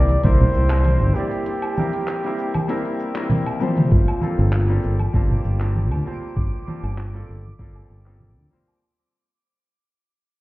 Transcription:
Already playing: fingered electric bass C2, harp E4 G4 A#4, flugelhorn D5
0.09 harp C5, closed hi-hat, high conga, shaker
0.23 fingered electric bass C2, grand piano G3 A#3 C4 E4 A#4, harp E4, flugelhorn C5, kick, closed hi-hat, shaker
0.40 harp G4, low conga, shaker
0.54 fingered electric bass C2, harp A#4, shaker
0.70 grand piano G3 A#3 C4 E4 A#4, clap, closed hi-hat, low woodblock, shaker
0.84 harp G4, closed hi-hat, high conga, shaker
1.01 fingered electric bass G1, harp G4, shaker
1.15 grand piano G3 A#3 C4 E4 D5, flugelhorn G4, harp A#4, shaker
1.31 harp C5, closed hi-hat, shaker
1.46 harp E4, closed hi-hat, shaker
1.62 harp G4, closed hi-hat, low woodblock, shaker
1.77 grand piano G3 A#3 C4 E4 A#4, harp A#4, high conga, shaker
1.93 harp C5, closed hi-hat, shaker
2.08 harp G4, clap, closed hi-hat, shaker
2.23 grand piano G3 A#3 C4 E4 A#4, harp G4, closed hi-hat, shaker
2.38 harp A#4, shaker
2.54 harp C5, closed hi-hat, high conga, low woodblock, shaker
2.68 grand piano G3 A#3 C4 E4 A#4, harp E4, closed hi-hat, shaker
2.85 harp G4, closed hi-hat, shaker
3.00 harp A#4, shaker
3.15 grand piano G3 A#3 C4 E4 A#4, harp G5, clap, closed hi-hat, shaker
3.30 harp E5, closed hi-hat, high conga, low conga, shaker
3.46 harp E5, closed hi-hat, low woodblock, shaker
3.60 grand piano F3 G3 A#3 C4 C5, harp C5, high tom, shaker
3.77 harp G4, closed hi-hat, mid tom, shaker
3.91 fingered electric bass G1, harp F4, synth texture D6, kick, shaker
4.08 harp G4, low woodblock, shaker
4.21 grand piano G3 A#3 C4 F4 A4, harp A4, high conga, shaker
4.38 fingered electric bass G1, harp A#4, shaker
4.53 harp G4, clap, shaker
4.68 grand piano G3 A#3 C4 F4 A4, harp G4, shaker
4.83 fingered electric bass G1, harp A4, shaker
4.99 harp A#4, high conga, low woodblock, shaker
5.13 fingered electric bass G1, grand piano G3 A#3 C4 F4 A5, harp F4, kick, shaker
5.30 harp G4, low conga, shaker
5.45 fingered electric bass G1, harp A4, shaker
5.59 grand piano G3 A#3 C4 F4 A5, clap, shaker
5.75 harp G4, high conga, shaker
5.91 fingered electric bass D2, harp G4, low woodblock, shaker
6.05 grand piano G3 A#3 C4 F4 C5, harp A4, shaker
6.22 harp A#4, shaker
6.36 fingered electric bass G1, kick, shaker
6.53 shaker
6.66 grand piano G3 A#3 C4 F4 A5, high conga, shaker
6.83 fingered electric bass G1, low woodblock, shaker
6.98 clap
7.13 grand piano G3 A#3 C4 F4 A4, shaker
7.29 fingered electric bass G1, shaker
7.45 high conga
7.59 fingered electric bass G1, grand piano G3 A#3 C4 F4 A4, kick
7.76 low woodblock, shaker
7.90 fingered electric bass G1, shaker
8.05 grand piano G3 A#3 C4 F4 A4, clap
8.20 high conga, low conga
8.37 fingered electric bass D2
8.51 grand piano G3 A#3 C4 F4 C5
8.68 low woodblock, shaker

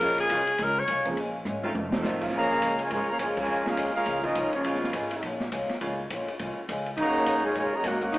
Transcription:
Already playing: tenor saxophone A#4
0.01 upright bass A#1, steel-string acoustic guitar A#2 G#3 C#4 F4, saxophone section C#3 G#3 A#3 F4, kick, ride
0.18 tenor saxophone G#4, ride
0.30 upright bass C2, steel-string acoustic guitar A#2 G#3 C#4 F4, saxophone section C#3 G#3 A#3 F4, kick, hi-hat pedal, ride
0.47 ride
0.58 upright bass C#2, steel-string acoustic guitar A#2 G#3 C#4 F4, kick, ride
0.64 tenor saxophone A#4
0.79 tenor saxophone C#5
0.88 upright bass C2, steel-string acoustic guitar A#2 G#3 C#4 F4, kick, hi-hat pedal, ride
1.05 grand piano F3 A#3 C4 C#4 G#4, ride
1.17 upright bass A#1, steel-string acoustic guitar A#2 G#3 C#4 F4, kick, ride
1.45 upright bass G#1, steel-string acoustic guitar A#2 G#3 C#4 F4, hi-hat pedal, high tom
1.63 saxophone section D#3 A3 C4 F4, high tom
1.74 upright bass F1, steel-string acoustic guitar F2 D#3 A3 C4, high tom
1.92 grand piano F3 A3 C4 D#4 A4, snare
2.02 upright bass A1, steel-string acoustic guitar F2 D#3 A3 C4, saxophone section D#3 A3 C4 F4, snare, hi-hat pedal
2.21 grand piano F3 A#3 C4 C#4 F4, kick, crash
2.30 upright bass A#1, steel-string acoustic guitar A#2, saxophone section C#3 G#3 A#3 F4, kick
2.35 trombone section C#3 F3 A#3, steel-string acoustic guitar G#3 C#4 F4, trumpet section G#4 F5 A#5
2.39 upright bass G#1, trumpet section C#5
2.52 upright bass F1
2.62 upright bass C#2, steel-string acoustic guitar A#2 G#3 C#4 F4, kick, hi-hat pedal, ride
2.79 trombone section C#3 F3 G#3, ride
2.83 trumpet section F4 A#4 C#5 G#5
2.90 upright bass G#2, steel-string acoustic guitar A#2 G#3 C#4 F4, trombone section C#3 F3 G#3, trumpet section F4 A#4 C#5 G#5, kick, ride
3.08 trombone section C#3 F3 A#3, trumpet section G#4 C#5 F5 A#5, muted upright bass stroke
3.19 upright bass F#2, steel-string acoustic guitar A#2 G#3 C#4 F4, trombone section C#3 F3 G#3, trumpet section F4 A#4 C#5 G#5, kick, hi-hat pedal, ride
3.37 trombone section C#3 F3 G#3, kick, crash
3.41 trumpet section F4 A#4 C#5 G#5
3.48 upright bass F2, steel-string acoustic guitar A#2 G#3 C#4 F4
3.64 trombone section G#3 C#4 F4, trumpet section C#4 A#4, snare
3.68 trumpet section G#4 F5
3.77 upright bass D#2, steel-string acoustic guitar A#2 G#3 C#4 F4, kick, hi-hat pedal, ride
3.93 trombone section G#3 C#4 F4, trumpet section C#4 G#4 A#4 F5
4.06 upright bass C#2, steel-string acoustic guitar A#2 G#3 C#4 F4, kick, ride
4.23 saxophone section C#3 G#3 A#3 F4, trombone section F3 G#3 D#4, trumpet section C#4 G#4 A#4 D#5, kick
4.35 upright bass C2, steel-string acoustic guitar A#2 G#3 C#4 F4, kick, hi-hat pedal, ride
4.53 trombone section F3 G#3 C#4, trumpet section A#3 F4 G#4 C#5, muted upright bass stroke, ride
4.64 upright bass A#1, steel-string acoustic guitar A#2 G#3 C#4 F4, saxophone section C#3 G#3 A#3 F4, kick, ride
4.74 snare
4.84 snare
4.93 upright bass G#1, steel-string acoustic guitar A#2 G#3 C#4 F4, kick, hi-hat pedal, ride
5.11 ride
5.23 upright bass A#1, steel-string acoustic guitar A#2 G#3 C#4, kick, ride
5.27 steel-string acoustic guitar F4
5.40 snare
5.52 upright bass C2, steel-string acoustic guitar A#2 G#3 C#4 F4, kick, hi-hat pedal, ride
5.69 muted upright bass stroke, snare, ride
5.81 upright bass C#2, steel-string acoustic guitar A#2 G#3 C#4 F4, saxophone section C#3 G#3 A#3 F4, kick, ride
6.10 upright bass A#1, steel-string acoustic guitar A#2 G#3 C#4 F4, kick, hi-hat pedal, ride
6.28 muted upright bass stroke, ride
6.39 upright bass C2, steel-string acoustic guitar A#2 G#3 C#4 F4, kick, ride
6.57 muted upright bass stroke
6.69 upright bass C#2, steel-string acoustic guitar A#2 G#3 C#4 F4, kick, hi-hat pedal, ride
6.86 ride
6.97 upright bass D#2, saxophone section C#3 F#3 A#3 D#4, trombone section C#3 F#3 A#3, steel-string acoustic guitar D#3 A#3 C#4 F#4, trumpet section D#5, kick, ride
7.01 trumpet section F#4 C#5 A#5
7.26 upright bass F#2, steel-string acoustic guitar D#3 A#3 C#4 F#4, kick, hi-hat pedal, ride
7.43 trombone section G#3, trumpet section F4 A#4 C#5 G#5, muted upright bass stroke
7.55 upright bass A#2, steel-string acoustic guitar D#3 A#3 C#4 F#4, trombone section G#3, trumpet section A#4 C#5 G#5, kick, ride
7.59 trumpet section F4
7.72 trombone section C#3 F#3 A#3, trumpet section F#4 D#5 A#5, muted upright bass stroke
7.76 trumpet section C#5
7.84 upright bass G#2, steel-string acoustic guitar D#3 A#3 C#4 F#4, trombone section A#3 C#4 F#4, trumpet section C#5, kick, snare, hi-hat pedal, ride
7.88 trumpet section D#4 A#4 F#5
8.02 trombone section A#3 C#4 F#4, trumpet section D#4 A#4 C#5 F#5, kick, ride
8.13 upright bass F#2, saxophone section C#3 F#3 A#3 D#4, steel-string acoustic guitar D#3 A#3, kick, ride

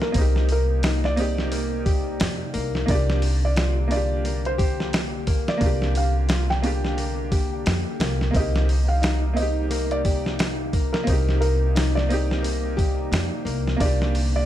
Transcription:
Already playing: ambient pad C3 A#3 D#4, upright piano A#3 C4 D#4 G4, nylon-string guitar A#3
0.02 felt piano A#4, snare
0.12 upright bass C2, upright piano A#3 C4, nylon-string guitar A#3, kick, open hi-hat
0.18 upright piano D#4 G4
0.36 snare
0.49 felt piano A#4, open hi-hat
0.83 nylon-string guitar D#4, snare, open hi-hat
1.04 felt piano D5, snare
1.16 upright piano A#3 C4 D#4, open hi-hat
1.21 upright piano G4
1.38 snare
1.52 nylon-string guitar A#3, open hi-hat
1.86 nylon-string guitar G4, kick, open hi-hat
2.20 upright bass F2, snare, open hi-hat
2.54 upright bass C2, nylon-string guitar A#3, open hi-hat
2.75 snare
2.86 upright bass C2, ambient pad D3 A#3 G4, upright piano A#3 D4, nylon-string guitar A#3, kick, open hi-hat
2.90 upright piano F4 G4, felt piano D5
3.10 snare
3.22 open hi-hat
3.45 felt piano D5
3.56 nylon-string guitar F4, snare, open hi-hat
3.88 upright piano A#3 D4, open hi-hat
3.92 upright piano F4, felt piano D5
3.96 upright piano G4
4.25 nylon-string guitar A#3, open hi-hat
4.45 felt piano C5, closed hi-hat
4.58 nylon-string guitar G4, kick, open hi-hat
4.80 snare
4.93 snare, open hi-hat
5.27 nylon-string guitar A#3, kick, open hi-hat
5.48 felt piano D5, snare
5.57 upright piano A#3 D4, nylon-string guitar A#3, kick, open hi-hat
5.61 upright bass C2, upright piano F4
5.66 upright piano G4
5.82 snare
5.95 felt piano F5, open hi-hat
6.29 nylon-string guitar F4, snare, open hi-hat
6.50 felt piano G5, snare
6.62 upright piano A#3 D4 F4 G4, open hi-hat
6.85 snare
6.97 nylon-string guitar A#3, open hi-hat
7.32 nylon-string guitar G4, kick, open hi-hat
7.66 upright bass F2, snare, open hi-hat
8.00 upright bass C2, nylon-string guitar A#3, snare, open hi-hat
8.21 snare
8.31 ambient pad C3 D#4, upright piano A#3 C4, nylon-string guitar A#3, kick, open hi-hat
8.35 upright bass C2, upright piano D#4, felt piano D#5
8.39 upright piano G4
8.56 snare
8.69 open hi-hat
8.88 felt piano F5
9.02 nylon-string guitar D#4, snare, open hi-hat
9.34 upright piano A#3 C4, felt piano D#5, open hi-hat
9.39 upright piano D#4 G4
9.71 nylon-string guitar A#3, open hi-hat
9.91 felt piano D5, closed hi-hat
10.05 nylon-string guitar G4, kick, open hi-hat
10.26 snare
10.39 snare, open hi-hat
10.73 nylon-string guitar A#3, kick, open hi-hat
10.93 felt piano A#4, snare
11.04 upright bass C2, upright piano A#3 C4, nylon-string guitar A#3, kick, open hi-hat
11.09 upright piano D#4 G4
11.29 snare
11.41 felt piano A#4, open hi-hat
11.75 nylon-string guitar D#4, snare, open hi-hat
11.95 felt piano D5, snare
12.09 upright piano A#3 C4 D#4, open hi-hat
12.13 upright piano G4
12.31 snare
12.43 nylon-string guitar A#3, open hi-hat
12.77 nylon-string guitar G4, kick, open hi-hat
13.12 upright bass F2, snare, open hi-hat
13.45 upright bass C2, nylon-string guitar A#3, open hi-hat
13.67 snare
13.77 upright bass C2, ambient pad D3 G4, upright piano A#3 D4, nylon-string guitar A#3, kick, open hi-hat
13.81 upright piano F4 G4, felt piano D5
14.02 snare
14.15 open hi-hat
14.36 felt piano D5

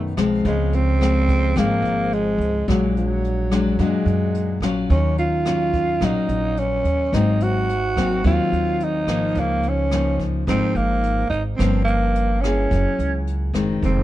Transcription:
Already playing: upright bass F#2, nylon-string guitar B2 D#3 A3 C#4, tenor saxophone A3
0.17 upright bass B1, nylon-string guitar F3 G#3 C4, cross-stick, closed hi-hat
0.45 upright bass C#2, nylon-string guitar C#3, tenor saxophone G#3, kick, closed hi-hat
0.73 tenor saxophone C4, closed hi-hat
1.01 nylon-string guitar F3 G#3 C4, cross-stick, closed hi-hat
1.28 kick, closed hi-hat
1.56 upright bass G#1, nylon-string guitar G#2 F3 G#3 C4, tenor saxophone A#3, kick, cross-stick, closed hi-hat
1.82 upright bass G#1, closed hi-hat
2.13 tenor saxophone G#3, closed hi-hat
2.38 upright bass C#2, closed hi-hat
2.68 upright bass A#1, nylon-string guitar A#2 F#3 G#3 D4, tenor saxophone F#3, kick, cross-stick, closed hi-hat
2.97 tenor saxophone F#3, closed hi-hat
3.24 closed hi-hat
3.51 nylon-string guitar F#3 G#3 D4, cross-stick, closed hi-hat
3.79 upright bass F#2, nylon-string guitar A#2 F#3 G#3 D4, tenor saxophone G#3, kick, closed hi-hat
4.06 upright bass F#2, closed hi-hat
4.34 closed hi-hat
4.60 upright bass A#1, nylon-string guitar F#3 C#4 F4, cross-stick, closed hi-hat
4.90 upright bass D#2, nylon-string guitar D#3, tenor saxophone C#4, kick, closed hi-hat
5.18 tenor saxophone F4, closed hi-hat
5.45 nylon-string guitar F#3 C#4 F4, cross-stick, closed hi-hat
5.73 kick, closed hi-hat
6.01 upright bass A#1, nylon-string guitar A#2 F#3 C#4 F4, tenor saxophone D#4, kick, cross-stick, closed hi-hat
6.29 upright bass A#1, closed hi-hat
6.57 tenor saxophone C#4, closed hi-hat
6.84 upright bass D#2, closed hi-hat
7.13 upright bass G#1, nylon-string guitar G#2 F#3 A#3 C4, tenor saxophone D#4, kick, cross-stick, closed hi-hat
7.40 tenor saxophone F#4, closed hi-hat
7.69 closed hi-hat
7.97 nylon-string guitar F#3 A#3 C4, kick, cross-stick, closed hi-hat
8.24 upright bass D#2, nylon-string guitar D#3 F#3 A#3 C4, tenor saxophone F4, kick, closed hi-hat
8.52 upright bass D#2, closed hi-hat
8.80 tenor saxophone D#4, closed hi-hat
9.07 upright bass G#1, nylon-string guitar F3 A#3 D#4, cross-stick, closed hi-hat
9.35 upright bass C#2, nylon-string guitar C#3, kick, closed hi-hat
9.40 tenor saxophone A#3
9.63 closed hi-hat
9.69 tenor saxophone C#4
9.91 nylon-string guitar F3 A#3 D#4, cross-stick, closed hi-hat
10.20 kick, closed hi-hat
10.47 upright bass G#1, nylon-string guitar G#2 F3 A#3 D#4, tenor saxophone C4, kick, cross-stick, closed hi-hat
10.75 upright bass G#1, tenor saxophone A#3, closed hi-hat
11.03 closed hi-hat
11.30 upright bass G#1, tenor saxophone D#4, closed hi-hat
11.56 upright bass G1, nylon-string guitar G2 F3 A#3 C#4, tenor saxophone C4, kick, cross-stick, closed hi-hat
11.85 tenor saxophone A#3, closed hi-hat
12.15 closed hi-hat
12.41 nylon-string guitar A#3 E4 G#4, tenor saxophone C#4, cross-stick, closed hi-hat
12.71 upright bass F#1, nylon-string guitar F#3, kick, closed hi-hat
12.99 upright bass C#2, closed hi-hat
13.27 closed hi-hat
13.53 upright bass F#1, nylon-string guitar D#3 G#3 C4, cross-stick, closed hi-hat
13.82 upright bass F1, nylon-string guitar F2, tenor saxophone C4, kick, closed hi-hat

